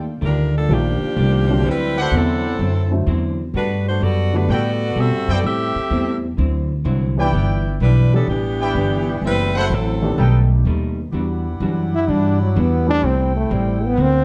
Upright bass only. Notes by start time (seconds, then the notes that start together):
Already playing: D#2
0.22 D2
0.69 A#1
1.02 muted upright bass stroke
1.17 C2
1.64 D2
2.12 E2
2.59 F#2
3.07 E2
3.54 G2
4.00 F#2
4.48 A2
4.96 B2
5.11 G2
5.28 F#2
5.43 A2
5.76 muted upright bass stroke
5.91 E2
6.38 D2
6.85 C2
7.33 G1
7.80 B1
8.27 A1
8.75 G1
9.21 F#1
9.70 A1
10.18 B1
10.65 D#2
11.12 E2
11.60 F#2
12.08 G2
12.56 E2
13.03 C2
13.51 A1
13.97 D2